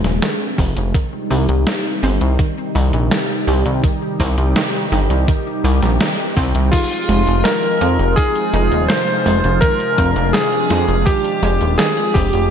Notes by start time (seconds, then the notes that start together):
Already playing: C3 F3 G#3 D4 G#4
0.04 D#1, snare, closed hi-hat
0.22 D#3, snare, closed hi-hat
0.58 F1 C4, kick, open hi-hat
0.77 F1, closed hi-hat
0.94 D#3 G3 D#4 G4, kick, closed hi-hat
1.30 C2 G4, open hi-hat
1.49 C2, closed hi-hat
1.67 D#3, snare, closed hi-hat
2.03 G1 C4, open hi-hat
2.21 C2, closed hi-hat
2.39 D#3, kick, closed hi-hat
2.75 C2 D#4, open hi-hat
2.93 A#1, closed hi-hat
3.11 D#3, snare, closed hi-hat
3.47 C2 G4, open hi-hat
3.66 C2, closed hi-hat
3.84 D#3, kick, closed hi-hat
4.20 C2 C4, kick, open hi-hat
4.38 C2, closed hi-hat
4.56 D#3, snare, closed hi-hat
4.92 G1 D#4, open hi-hat
5.10 C2, closed hi-hat
5.28 D#3, kick, closed hi-hat
5.64 C2 G4, open hi-hat
5.82 A#1, snare, closed hi-hat
6.01 D#3, snare, closed hi-hat
6.37 C2 C4, kick, open hi-hat
6.55 C2, closed hi-hat
6.71 C3 D#3 F3 G#3 D#4 F4, kick, closed hi-hat, crash, tambourine
6.91 closed hi-hat, tambourine
7.09 F1 G#3, closed hi-hat, tambourine
7.27 F1, closed hi-hat, tambourine
7.44 D#3 A#4, snare, closed hi-hat, tambourine
7.63 closed hi-hat
7.81 F2 C4, closed hi-hat, tambourine
7.99 F1, closed hi-hat, tambourine
8.16 D#3 G#4, kick, closed hi-hat, tambourine
8.35 closed hi-hat
8.53 F1 D#4, closed hi-hat, tambourine
8.72 D#1, closed hi-hat, tambourine
8.88 D#3 C5, snare, closed hi-hat, tambourine
9.08 closed hi-hat, tambourine
9.26 F1 G#3, open hi-hat, tambourine
9.44 F1, closed hi-hat, tambourine
9.61 D#3 D4 A#4, kick, closed hi-hat, tambourine
9.80 closed hi-hat, tambourine
9.98 F1 C4, kick, closed hi-hat, tambourine
10.16 F1, closed hi-hat, tambourine
10.33 D#3 G#4, snare, closed hi-hat, tambourine
10.52 closed hi-hat
10.70 F2 D#4, snare, closed hi-hat, tambourine
10.89 F1, closed hi-hat, tambourine
11.05 D#3 G4, kick, closed hi-hat, tambourine
11.25 closed hi-hat
11.43 F1 G#3, closed hi-hat, tambourine
11.61 D#1, closed hi-hat, tambourine
11.78 D#3 G#4, snare, closed hi-hat, tambourine
11.97 closed hi-hat, tambourine
12.14 F1 C4 G4, kick, open hi-hat, tambourine
12.33 F1, closed hi-hat, tambourine